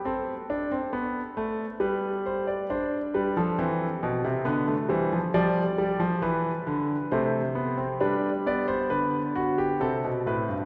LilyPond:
<<
  \new Staff \with { instrumentName = "Grand piano" } { \time 3/4 \key g \mixolydian \tempo 4 = 68 a'2 b'8 c''16 d''16 | c''8 b'16 a'4~ a'16 b'8 c''8 | d''4 b'4 c''4 | b'8 d''16 c''16 b'8 fis'16 g'16 a'8 b'8 | }
  \new Staff \with { instrumentName = "Grand piano" } { \clef bass \time 3/4 \key g \mixolydian << { c'8 d'16 c'16 b8 a8 g4 | d'4 c'4 b16 a16 g16 f16 | g2 a8 b16 c'16 | d'8 b4. c'4 | } \\ { r2. | r8 g16 f16 e8 b,16 c16 d8 e8 | f8 g16 f16 e8 d8 c4 | g4 d4 c16 b,16 a,16 g,16 | } >> }
>>